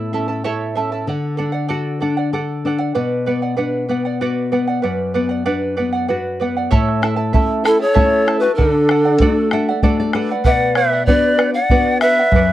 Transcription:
Already playing: A2 E4 A4 E5 A5
0.13 C#4 E4 A4 E5 A5
0.28 E4 A4 A5
0.44 E4 A4 C#5 E5 A5
0.75 C#4 E4 A4 E5 A5
0.92 E4 A4 A5
1.07 D3 A4 D5 F#5
1.37 D4 A4 D5 F#5
1.52 D5 F#5
1.68 F#4 A4 D5 F#5
2.00 D4 A4 D5 F#5
2.17 D5 F#5
2.33 A4 D5 F#5
2.65 D4 A4 D5 F#5
2.79 D5 F#5
2.95 B2 B4 D5 F#5
3.26 B3 B4 D5 F#5
3.42 D5 F#5
3.57 D4 B4 D5 F#5
3.89 B3 B4 D5 F#5
4.05 D5 F#5
4.21 F#4 B4 D5 F#5
4.52 B3 B4 D5 F#5
4.68 D5 F#5
4.82 F#2 B4 D5 F#5
5.14 B3 B4 D5 F#5
5.29 D5 F#5
5.46 D4 B4 D5 F#5
5.77 B3 B4 D5 F#5
5.93 D5 F#5
6.08 F#4 B4 D5 F#5
6.40 B3 B4 D5 F#5
6.57 D5 F#5
6.71 A2 E4 A4 C#5 E5 A5, bombo rim, bombo low
6.88 bombo rim
7.02 E4 A4 E5 A5, bombo rim
7.16 E4 A4 A5
7.33 A3 C#4 E4 A4 E5 A5, bombo low
7.64 E4 A4 E5 A5, bombo rim
7.79 E4 A4 C#5 A5
7.94 A3 C#4 E4 A4 C#5 E5 A5, bombo low
8.12 bombo rim
8.26 E4 A4 E5 A5, bombo rim
8.39 F#4 B4 A5, bombo rim
8.44 E4 A4
8.55 D3 D4 A4 D5 F#5, bombo rim, bombo low
8.75 bombo rim
8.89 A4 D5 F#5, bombo rim
9.05 D5 F#5
9.20 A3 D4 F#4 A4 D5 F#5, bombo low
9.51 A4 D5 E5 F#5, bombo rim
9.69 D5 F#5
9.83 A3 D4 F#4 A4 D5 F#5, bombo low
9.97 D5, bombo rim
10.13 A4 B4 D5 F#5, bombo rim
10.29 D5 F#5, bombo rim
10.45 B2 B4 D5 E5 F#5, bombo rim, bombo low
10.51 D5
10.60 bombo rim
10.75 B4 D5 E5 F#5, bombo rim
10.93 D5 F#5
11.06 B3 D4 F#4 B4 D5 F#5, bombo low
11.38 B4 D5 F#5, bombo rim
11.54 D5 F#5
11.70 B3 D4 F#4 B4 D5 F#5, bombo low
11.87 bombo rim
12.01 B4 D5 E5 F#5, bombo rim
12.18 D5 F#5, bombo rim
12.32 F#2 B4, bombo rim, bombo low
12.36 D5 F#5

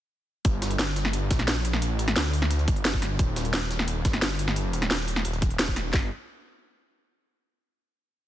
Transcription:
0.45 G1, kick, closed hi-hat
0.62 snare, closed hi-hat
0.71 closed hi-hat
0.79 snare, closed hi-hat
0.96 snare, closed hi-hat
1.05 snare
1.13 closed hi-hat
1.31 A#1, kick, snare, closed hi-hat
1.39 snare, closed hi-hat
1.48 snare, closed hi-hat
1.65 closed hi-hat
1.73 snare
1.82 closed hi-hat
1.91 A1
1.99 closed hi-hat
2.08 snare, closed hi-hat
2.16 D2, snare, closed hi-hat
2.33 closed hi-hat, open hi-hat
2.42 snare
2.51 closed hi-hat
2.59 closed hi-hat
2.68 G1, kick, closed hi-hat
2.76 closed hi-hat
2.85 snare, closed hi-hat
2.94 kick
3.02 snare, closed hi-hat
3.19 D#1, kick, closed hi-hat
3.36 snare, closed hi-hat
3.45 closed hi-hat
3.53 snare, closed hi-hat
3.71 snare, closed hi-hat
3.79 snare
3.88 closed hi-hat
4.05 G1, kick, snare, closed hi-hat
4.13 snare, closed hi-hat
4.22 snare, closed hi-hat
4.39 closed hi-hat
4.48 snare
4.56 closed hi-hat
4.73 closed hi-hat
4.82 snare, closed hi-hat
4.91 D#1, snare, closed hi-hat
5.08 closed hi-hat, open hi-hat
5.16 snare
5.25 D#1, closed hi-hat
5.33 closed hi-hat
5.42 kick, closed hi-hat
5.51 closed hi-hat
5.59 snare, closed hi-hat
5.68 kick
5.76 D#1, snare, closed hi-hat
5.93 G1, kick, snare, clap

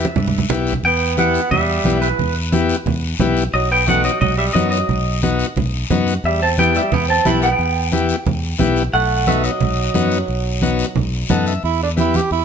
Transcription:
Already playing: E5
0.05 high conga
0.16 G2, low conga, long guiro
0.27 low conga
0.38 low conga
0.49 B1 B3 E4 G4, low conga, short guiro
0.67 short guiro
0.73 low conga
0.83 E2 B3 G5, high conga, long guiro
1.17 B3 E4 G4 F#5, high conga, short guiro
1.34 short guiro
1.51 E2 G3 E5, high conga, low conga, long guiro
1.84 B1 B3 E4 G4, high conga, short guiro
2.01 E3 B4, short guiro
2.18 E2, high conga, low conga, long guiro
2.52 B3 E4 G4, high conga, short guiro
2.69 short guiro
2.86 E2, high conga, low conga, long guiro
3.19 B1 B3 E4 G4, high conga, low conga, short guiro
3.37 short guiro
3.53 B1 F#3 D#5, high conga, long guiro
3.71 B3 G5
3.87 A3 B3 D#4 F#4 F#5, high conga, short guiro
4.04 F#3 D#5, short guiro
4.20 B1 F#3 D#5, high conga, low conga, long guiro
4.37 G3 E5
4.53 F#2 F#3 B3 D#4 F#4 D#5, high conga, short guiro
4.71 F#3 D#5, short guiro
4.89 B1, high conga, low conga, long guiro
5.22 B3 D#4 F#4, high conga, short guiro
5.39 short guiro
5.56 B1, high conga, low conga, long guiro
5.90 F#2 B3 D#4 F#4, high conga, low conga, short guiro
6.07 short guiro
6.24 E2 G3 E5, high conga, long guiro
6.42 C4 A5
6.58 B3 E4 G4 G5, high conga, short guiro
6.75 G3 E5, short guiro
6.92 E2 B3 G5, high conga, low conga, long guiro
7.08 C4 A5
7.25 B1 B3 E4 G4 B5, high conga, short guiro
7.42 B3 G5, short guiro
7.59 E2, high conga, long guiro
7.92 B3 E4 G4, high conga, short guiro
8.09 short guiro
8.26 E2, high conga, low conga, long guiro
8.59 B1 B3 E4 G4, high conga, low conga, short guiro
8.76 short guiro
8.93 B1 A3 F#5, high conga, long guiro
9.27 A3 B3 D#4 F#4 E5, high conga, short guiro
9.44 F#3 D#5, short guiro
9.60 B1, high conga, low conga, long guiro
9.94 F#2 B3 D#4 F#4, high conga, short guiro
10.11 short guiro
10.28 B1, high conga, long guiro
10.62 B3 D#4 F#4, high conga, short guiro
10.79 short guiro
10.96 B1, high conga, low conga, long guiro
11.29 F#2 B3 D#4 A4 F#5, high conga, low conga, short guiro
11.46 E5, short guiro
11.63 E2 E4, long guiro
11.83 D4
11.97 B3 E4 G4, high conga, short guiro
12.14 G4, high conga, short guiro
12.31 E2 E4, long guiro

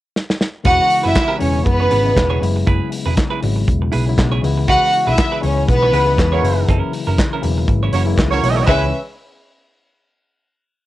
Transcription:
0.16 snare
0.30 snare
0.41 snare
0.64 E1 C#3 E3 G#3 B3 C#4 E4 F#4 G#4 B4 F#5, kick, closed hi-hat
0.90 muted clean electric guitar stroke, open hi-hat
1.03 F#1 C#4 E4 G#4 B4 E5
1.14 muted clean electric guitar stroke, kick, snare, clap, closed hi-hat
1.28 C#4 G#4 B4
1.39 E1 C#3 E3 G#3 B3 C#4 E4 C#5, muted clean electric guitar stroke, open hi-hat
1.54 muted clean electric guitar stroke
1.65 F#1 B3 B4, muted clean electric guitar stroke, kick, closed hi-hat
1.80 C#4 G#4 C#5
1.91 G#1 C#4 G#4 B4, open hi-hat
2.04 C#3 E3 G#3 B3 E4, muted clean electric guitar stroke
2.16 E1, muted clean electric guitar stroke, kick, snare, clap, closed hi-hat
2.30 C#4 G#4 C#5
2.40 F#1 C#3 F#3 G#3 B3 E4, muted clean electric guitar stroke, open hi-hat
2.56 muted clean electric guitar stroke
2.67 F#1 E4 G#4 B4, kick, closed hi-hat
2.92 muted clean electric guitar stroke, open hi-hat
3.06 E1 E4 G#4 B4
3.17 muted clean electric guitar stroke, kick, snare, clap, closed hi-hat
3.30 E4 G#4 B4
3.42 G#1 C#3 F#3 G#3 B3 E4, muted clean electric guitar stroke, open hi-hat
3.56 muted clean electric guitar stroke
3.68 E1, kick, closed hi-hat
3.82 muted clean electric guitar stroke
3.92 B1 E4 G#4 B4, open hi-hat
4.07 C#3 F#3 G#3 B3 E4, muted clean electric guitar stroke
4.18 B1, muted clean electric guitar stroke, kick, snare, clap, closed hi-hat
4.32 E4 G#4 C#5
4.43 C#2 C#3 E3 G#3 B3 E4, muted clean electric guitar stroke, open hi-hat
4.58 muted clean electric guitar stroke
4.68 E4 F#4 G#4 B4 F#5, kick, closed hi-hat
4.93 muted clean electric guitar stroke, open hi-hat
5.07 B1 E4 G#4 B4 E5
5.18 kick, snare, clap, closed hi-hat
5.32 E4 G#4 B4
5.42 C#2 C#3 E3 G#3 B3 C#4 E4 C#5, muted clean electric guitar stroke, open hi-hat
5.57 muted clean electric guitar stroke
5.67 B1 B3 B4, muted clean electric guitar stroke, kick, closed hi-hat
5.83 E4 G#4 C#5
5.93 C#2 G#3 E4 G#4 B4, open hi-hat
6.05 C#3 E3 G#3 B3 E4, muted clean electric guitar stroke
6.18 E2, muted clean electric guitar stroke, kick, snare, clap, closed hi-hat
6.32 A#3 E4 F#4 G#4 C#5
6.42 F#1 C#3 E3 F#3 A#3 E4, muted clean electric guitar stroke, open hi-hat
6.57 muted clean electric guitar stroke
6.68 F#1 C#4 E4 A#4, kick, closed hi-hat
6.93 muted clean electric guitar stroke, open hi-hat
7.07 F#1 C#4 E4 A#4
7.18 muted clean electric guitar stroke, kick, snare, clap, closed hi-hat
7.33 C#4 E4 A#4
7.41 E1 C#3 E3 F#3 A#3 E4, muted clean electric guitar stroke, open hi-hat
7.58 muted clean electric guitar stroke
7.68 G#1, muted clean electric guitar stroke, kick, closed hi-hat
7.83 C#4 E4 C#5
7.93 F#1 A#3 C#4 E4 F#4 A#4 C#5, open hi-hat
8.05 C#3 E3 F#3 G#3 E4, muted clean electric guitar stroke
8.13 A#3
8.17 C#2 E3 C#4, muted clean electric guitar stroke, kick, snare, clap, closed hi-hat
8.31 A#3 C#4 E4 F#4 C#5
8.42 B1 G#3 E4, open hi-hat
8.57 muted clean electric guitar stroke
8.66 C#2 C#3 E3 G#3 B3 C#4 E4 B4 E5, kick, floor tom, crash

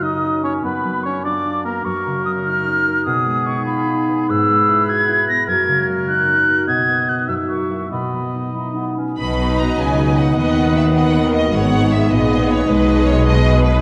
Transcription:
Already playing: F#2 C#3 C#4 C#5
0.02 D#4 D#5 D#6
0.24 C#4
0.43 A#3 C#4 C#5 C#6
0.63 F#2 B3 B4 B5
0.85 F#3
1.03 C#4 D4 C#5 C#6
1.24 D4 F4 D5 D6
1.45 D4
1.65 A#3 B3 A#4 A#5
1.85 F#2 F#4 A#4 C#6
2.06 C#3
2.25 C#4 D#6
2.45 D#4 F6
2.66 C#4
2.86 A#3
3.05 B2 B3 G#4 D#6
3.26 G#3
3.46 D#4 C#6
3.66 F4 B5
3.87 D#4
4.08 B3
4.29 G#2 G#4 B4 E6
4.50 G#3
4.69 E4
4.89 F#4 G#6
5.08 E4
5.28 B3 A#6
5.48 F#2 F#4 A#4 G#6
5.68 C#3
5.88 C#4
6.08 D#4 F#6
6.28 C#4
6.48 A#3
6.67 B2 B3 D#5 G#6
6.88 B3
7.08 D#4 F#4 F#6
7.28 F#2 F#4 E5 E6
7.49 A#3 C#6
7.71 E4 F#4
7.91 B2 B3 D#5 B5
8.13 F#3
8.34 D#4
8.55 D#4 E4
8.75 B3 D#4
8.97 B3 C#4
9.18 B1 B2 F#3 B3 D#4 B4 D#5 B5
9.29 F#3
9.40 B3
9.50 D#4
9.59 F#4 A#5
9.69 B4
9.78 C#2 C#3 D#5 G#5
9.89 F#5
9.99 D#5
10.08 B4
10.17 F#4 F#5
10.28 D#4
10.37 D#2 D#3 B3 B4 D#5 F#5
10.48 B3
10.58 D#4
10.68 F#4
10.77 B4 E5
10.95 B3 B4 D#5 F#5
11.07 B5
11.16 F#5
11.25 A#4 D#5
11.34 B4 D#5
11.45 F#4
11.53 G#1 G#2 B3 D#4 G#4 C#5 D#5 F#5
11.64 D#3
11.74 B3
11.83 D#4
11.92 G#4 E5
12.02 B4
12.11 A#1 A#2 B3 G#4 B4 D#5
12.21 G#5
12.30 D#5
12.39 B4
12.49 G#4 C#5
12.59 D#4
12.67 B1 B2 G#3 G#4 B4 D#5
12.78 G#3
12.88 B3
12.97 D#4
13.06 G#4 C#5
13.17 B4
13.25 G#3 G#4 B4 D#5
13.35 G#5
13.45 D#5
13.55 B4
13.64 B4
13.74 D#4

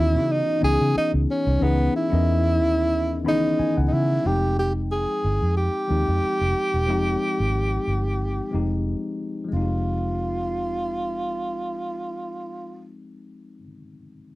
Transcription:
Already playing: D#2 E3 B3 C#4 D#4 E4 F4 F#4 G#4 B4 D#5
0.15 C#3
0.32 D#4
0.60 C#2 E3 B3 C#4 D#4 G#4
0.64 G#4
0.81 C#3
0.96 D#4, muted fingered electric bass stroke
1.14 C#2
1.31 C#4
1.47 C2
1.59 C#2 E3 B3 C#4 D#4
1.63 B3 G#4
1.96 E4
2.10 E2 B3 C#4 E4 D#5
2.14 A#4
2.61 D#2
3.24 C#2 D#3 B3 C#4 D#4 B5
3.28 E3 D#4 G#4
3.59 G#5, muted fingered electric bass stroke
3.77 C#2 F#5
3.88 D#4
3.92 C#3 E4 E5
4.23 F1 F3 G#3 C4 D#4 G4
4.27 G5
4.59 G4
4.92 G#4
5.24 G1
5.42 F2
5.57 G4
5.88 D#2 F3 G#3 C4 D#4 G4
6.08 F2
6.23 muted fingered electric bass stroke
6.41 F1
6.74 E1
6.87 F1 F3 G#3 C4 D#4
6.91 G4
7.40 G#1
7.88 G1
8.51 F1 F3 G#3 C4 D#4
8.55 G4
9.45 F3
9.49 G#3 C4
9.53 F1 D#4 F4
9.61 G4

